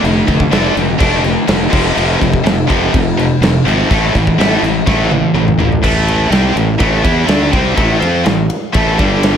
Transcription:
0.03 fingered electric bass F1, distorted electric guitar D3 A3, crash
0.27 fingered electric bass F1, distorted electric guitar D3 A3, kick, crash
0.40 kick
0.51 fingered electric bass F1, distorted electric guitar D3 A3 D4, snare, crash
0.75 fingered electric bass F1, distorted electric guitar D3 A3, crash
0.99 fingered electric bass F1, distorted electric guitar D3 A3 D4, kick, crash
1.23 distorted electric guitar D3 A3, crash
1.48 fingered electric bass F1, distorted electric guitar D3 A3, snare, crash
1.70 fingered electric bass F1, distorted electric guitar F2 C3 F3, kick, crash
1.95 fingered electric bass F1, distorted electric guitar F2 C3 F3, crash
2.20 fingered electric bass F1, distorted electric guitar F2 C3, kick, crash
2.33 kick
2.44 fingered electric bass F1, distorted electric guitar F2 C3, snare, crash
2.67 fingered electric bass F1, distorted electric guitar F2 C3 F3, kick, crash
2.93 fingered electric bass F1, distorted electric guitar F2 C3, kick, crash
3.17 distorted electric guitar F2 C3, crash
3.41 fingered electric bass F1, distorted electric guitar F2 C3, snare, crash
3.65 fingered electric bass G#1, distorted electric guitar F2 C3 F3, crash
3.90 fingered electric bass A1, distorted electric guitar A2 E3 A3, kick, crash
4.14 fingered electric bass A1, distorted electric guitar A2 E3, kick, crash
4.27 kick
4.38 fingered electric bass A1, distorted electric guitar A2 E3 A3, snare, crash
4.63 fingered electric bass A1, distorted electric guitar A2 E3, crash
4.86 fingered electric bass A1, distorted electric guitar A2 E3 A3, kick, snare
5.11 distorted electric guitar A2 E3, high tom
5.34 fingered electric bass A1, distorted electric guitar A2 E3, mid tom
5.48 mid tom
5.58 fingered electric bass A1, distorted electric guitar A2 E3, floor tom
5.72 floor tom
5.83 fingered electric bass A1, distorted electric guitar A2 E3 A3, kick, crash
6.08 ride
6.30 fingered electric bass C2, distorted electric guitar C3 G3 C4, snare, ride
6.55 fingered electric bass A1, distorted electric guitar A2 E3, ride
6.79 fingered electric bass A1, distorted electric guitar A2 E3 A3, kick, ride
7.03 fingered electric bass E2, distorted electric guitar E3 B3 E4, kick, ride
7.26 fingered electric bass D2, distorted electric guitar D3 A3 D4, snare, ride
7.42 snare
7.51 fingered electric bass C2, distorted electric guitar C3 G3 C4, kick, ride
7.75 fingered electric bass A1, distorted electric guitar A2 E3 A3, kick, ride
7.99 fingered electric bass F2, distorted electric guitar F3 C4 F4, ride
8.25 fingered electric bass A1, distorted electric guitar A2 E3, snare, ride
8.50 ride
8.73 fingered electric bass A1, distorted electric guitar A2 E3 A3, kick, ride
8.98 fingered electric bass G1, distorted electric guitar G2 D3 G3, kick, ride
9.23 snare, ride

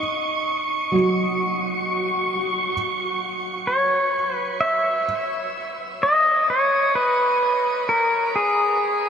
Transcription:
Already playing: felt piano D#4, synth texture C#6
0.92 felt piano F#3
3.67 pedal steel guitar C#5
4.35 pedal steel guitar B4
4.61 pedal steel guitar E5
6.03 pedal steel guitar D#5
6.50 pedal steel guitar C#5
6.95 pedal steel guitar B4
7.89 pedal steel guitar A#4
8.36 pedal steel guitar G#4

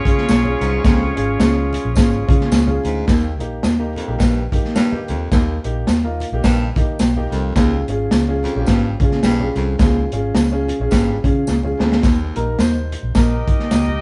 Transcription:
Already playing: horn section C#4 F4 G#4 C#5
0.05 fingered electric bass C#3, upright piano C#4 F4 G#4, kick, closed hi-hat
0.18 snare
0.28 fingered electric bass B1, snare, closed hi-hat, tambourine, high conga
0.44 upright piano C#4 F4 G#4, high conga
0.61 fingered electric bass C2, baritone saxophone G#2, closed hi-hat
0.83 fingered electric bass C#2, baritone saxophone F2, upright piano C#4 F4 G#4, kick, snare, closed hi-hat, tambourine, muted conga
1.16 fingered electric bass G#1, upright piano C#4 F4 G#4, closed hi-hat, muted conga
1.39 fingered electric bass C#2, upright piano C#4 F4 G#4, snare, closed hi-hat, tambourine, high conga
1.73 closed hi-hat, muted conga
1.85 fingered electric bass A#1
1.95 fingered electric bass G#1, upright piano C#4 F4 G#4, kick, snare, closed hi-hat, tambourine, muted conga
2.28 fingered electric bass C#3, upright piano C#4 F4 G#4, kick, closed hi-hat, low conga
2.41 snare
2.52 fingered electric bass C#2, snare, closed hi-hat, tambourine, high conga
2.67 upright piano C#4 F4 G#4, high conga
2.85 fingered electric bass D2, baritone saxophone G#2, closed hi-hat
3.06 baritone saxophone D#2, fingered electric bass D#2, upright piano A#3 D#4 G4, kick, snare, closed hi-hat, tambourine, muted conga
3.39 fingered electric bass A#1, upright piano A#3 D#4 G4, closed hi-hat, muted conga
3.63 fingered electric bass D#2, snare, closed hi-hat, tambourine, high conga
3.79 upright piano A#3 D#4 G4
3.96 baritone saxophone F2, closed hi-hat, muted conga
4.07 fingered electric bass A#1, upright piano A#3 D#4 G4
4.18 fingered electric bass A#1, baritone saxophone G2, kick, snare, closed hi-hat, tambourine, muted conga
4.52 fingered electric bass D#3, upright piano A#3 D#4 G4, kick, closed hi-hat, low conga
4.65 snare
4.75 baritone saxophone G2, snare, closed hi-hat, tambourine, high conga
4.91 upright piano A#3 D#4 G4, high conga
5.08 fingered electric bass D#2, baritone saxophone F2, closed hi-hat
5.31 fingered electric bass D#2, baritone saxophone D#2, upright piano A#3 D#4 G4, kick, snare, closed hi-hat, tambourine
5.64 fingered electric bass A#1, upright piano A#3 D#4 G4, closed hi-hat, muted conga
5.87 fingered electric bass D#2, snare, closed hi-hat, tambourine, high conga
6.04 upright piano A#3 D#4 F4
6.20 closed hi-hat, muted conga
6.32 fingered electric bass A#1, upright piano A#3 D#4 G4
6.44 fingered electric bass A#1, baritone saxophone G2, kick, snare, closed hi-hat, tambourine, muted conga
6.76 fingered electric bass D#3, upright piano A#3 D#4 G4 D#5, kick, closed hi-hat, low conga
6.99 fingered electric bass B1, upright piano G5, snare, closed hi-hat, tambourine, high conga
7.16 upright piano A#3 D#4 G4, high conga
7.31 fingered electric bass C2, baritone saxophone F2, closed hi-hat
7.55 fingered electric bass C#2, baritone saxophone D#2, upright piano C#4 F4 G#4, kick, snare, closed hi-hat, tambourine, muted conga
7.88 fingered electric bass G#1, upright piano C#4 F4 G#4, closed hi-hat, muted conga
8.11 fingered electric bass C#2, snare, closed hi-hat, tambourine, high conga
8.28 upright piano C#4 F4 G#4
8.44 baritone saxophone F2, closed hi-hat, muted conga
8.56 fingered electric bass A#1, upright piano C#4 F4 G4
8.66 fingered electric bass G#1, baritone saxophone G2, kick, snare, closed hi-hat, tambourine, muted conga
9.00 fingered electric bass C#3, upright piano C#4 F4 G#4, kick, closed hi-hat, low conga
9.11 snare
9.23 fingered electric bass B1, baritone saxophone G2, snare, closed hi-hat, tambourine, high conga
9.40 upright piano C#4 F4 G#4, high conga
9.55 fingered electric bass C2, baritone saxophone F2, closed hi-hat
9.78 fingered electric bass C#2, baritone saxophone D#2, upright piano C#4 F4 G#4, kick, snare, closed hi-hat, tambourine, muted conga
10.12 fingered electric bass G#1, upright piano C#4 F4 G#4, closed hi-hat, muted conga
10.35 fingered electric bass C#2, snare, closed hi-hat, tambourine, high conga
10.52 upright piano C#4 F4 G#4
10.68 closed hi-hat, muted conga
10.80 fingered electric bass A#1, upright piano C#4 F4 G#4
10.91 fingered electric bass G#1, baritone saxophone G2, kick, snare, closed hi-hat, tambourine, muted conga
11.24 fingered electric bass C#3, upright piano C#4 F4 G#4, kick, closed hi-hat, low conga
11.47 fingered electric bass C#2, snare, tambourine, high conga
11.63 upright piano C#4 F4 G#4, high conga
11.79 fingered electric bass D2, baritone saxophone F2, snare
11.92 snare
12.03 baritone saxophone D#2, fingered electric bass D#2, kick, snare, closed hi-hat, tambourine
12.36 fingered electric bass A#1, upright piano G3 A#3 D#4 A#4, closed hi-hat, muted conga
12.59 fingered electric bass D#2, upright piano C5, snare, closed hi-hat, tambourine, high conga
12.92 closed hi-hat, muted conga
13.03 fingered electric bass A#1
13.15 fingered electric bass A#1, horn section D#4 G4 A#4 D#5, upright piano A#4, kick, snare, closed hi-hat, tambourine, muted conga
13.48 fingered electric bass D#3, kick, closed hi-hat
13.59 snare
13.71 fingered electric bass C#2, upright piano G4, snare, closed hi-hat, tambourine, high conga
13.88 high conga

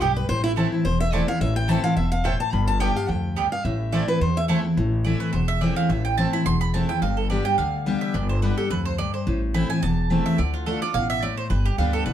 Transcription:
0.00 upright bass B1, steel-string acoustic guitar G2 G4, mandolin B3 G4 D5 G5
0.16 steel-string acoustic guitar B4
0.29 upright bass A1, steel-string acoustic guitar A2 C5
0.44 steel-string acoustic guitar E4
0.56 steel-string acoustic guitar E3 A3 C4 E4, mandolin A3 E4 C5 A5
0.72 steel-string acoustic guitar C4 E4
0.85 upright bass E1, steel-string acoustic guitar E2 C5
1.00 steel-string acoustic guitar E5
1.12 steel-string acoustic guitar E3 A3 C4 E4 D5, mandolin A3 E4 C5 A5
1.28 steel-string acoustic guitar C4 E4 F5
1.41 upright bass A1, steel-string acoustic guitar A2 E5
1.56 steel-string acoustic guitar G5
1.68 steel-string acoustic guitar E3 A3 C4 E4 A5, mandolin A3 E4 C5 A5
1.84 steel-string acoustic guitar C4 E4 F5
1.97 upright bass E1, steel-string acoustic guitar B2 E5
2.12 steel-string acoustic guitar F5
2.24 steel-string acoustic guitar A2 G5, mandolin A3 E4 C5 A5
2.40 steel-string acoustic guitar A5
2.53 upright bass G1, steel-string acoustic guitar G2 B5
2.67 steel-string acoustic guitar A5
2.80 steel-string acoustic guitar G3 B3 D4 G4 G5, mandolin B3 G4 D5 G5
2.96 steel-string acoustic guitar D4 G4 F5
3.08 upright bass D2, steel-string acoustic guitar F2 G5
3.36 steel-string acoustic guitar G2, mandolin B3 G4 D5 G5
3.52 steel-string acoustic guitar F5
3.65 upright bass A1, steel-string acoustic guitar A2 E5
3.92 steel-string acoustic guitar E3 A3 C4 E4 D5, mandolin A3 E4 C5 A5
4.08 steel-string acoustic guitar C4 E4 B4
4.21 upright bass E2, steel-string acoustic guitar E2 C5
4.37 steel-string acoustic guitar E5
4.48 steel-string acoustic guitar E3 A3 C4 E4, mandolin A3 E4 C5 A5
4.64 steel-string acoustic guitar C4 E4
4.77 upright bass A1, steel-string acoustic guitar A2
5.05 steel-string acoustic guitar E3 A3 C4 E4, mandolin D5
5.20 mandolin B4
5.33 upright bass E1, steel-string acoustic guitar E2, mandolin C5
5.48 mandolin E5
5.61 steel-string acoustic guitar E3 A3 C4 E4, mandolin D5
5.76 mandolin F5
5.89 upright bass A1, steel-string acoustic guitar A2, mandolin E5
6.05 mandolin G5
6.17 steel-string acoustic guitar E3 A3 C4 E4, mandolin A5
6.33 steel-string acoustic guitar C4 E4, mandolin B5
6.46 upright bass E1, steel-string acoustic guitar E2, mandolin C6
6.61 mandolin B5
6.74 steel-string acoustic guitar E3 A3 C4 E4, mandolin A5
6.89 steel-string acoustic guitar C4 E4, mandolin G5
7.02 upright bass G1, steel-string acoustic guitar G2, mandolin F5
7.17 mandolin A4
7.30 steel-string acoustic guitar G3 B3 D4 G4, mandolin D5
7.45 steel-string acoustic guitar D4 G4, mandolin G5
7.58 upright bass D2, steel-string acoustic guitar D3, mandolin F5
7.86 steel-string acoustic guitar G3 B3 D4 G4
8.01 mandolin E5
8.14 upright bass G1, steel-string acoustic guitar G2, mandolin D5
8.29 mandolin C5
8.42 steel-string acoustic guitar G3 B3 D4 G4, mandolin B4
8.58 steel-string acoustic guitar D4 G4, mandolin A4
8.70 upright bass D2, steel-string acoustic guitar F2, mandolin B4
8.85 mandolin C5
8.98 steel-string acoustic guitar G2, mandolin D5
9.14 mandolin C5
9.27 upright bass A1, steel-string acoustic guitar A2
9.54 steel-string acoustic guitar E3 A3 C4 E4, mandolin B5
9.69 steel-string acoustic guitar C4 E4, mandolin G#5
9.83 upright bass E1, steel-string acoustic guitar E2, mandolin A5
10.10 steel-string acoustic guitar E3 A3 C4 E4
10.26 mandolin E5
10.38 upright bass D2, steel-string acoustic guitar D3, mandolin D5
10.54 mandolin F4
10.66 steel-string acoustic guitar D3 A3 D4 F4, mandolin A4
10.82 steel-string acoustic guitar D4 F4, mandolin D5
10.94 upright bass A1, steel-string acoustic guitar B2, mandolin F5
11.10 mandolin E5
11.23 steel-string acoustic guitar A2, mandolin D5
11.37 mandolin C5
11.50 upright bass G1, steel-string acoustic guitar G2, mandolin B4
11.66 mandolin G4
11.78 upright bass D2, steel-string acoustic guitar G3 B3 D4 G4, mandolin F4
11.93 mandolin A4
12.06 upright bass C2, steel-string acoustic guitar D3, mandolin B4

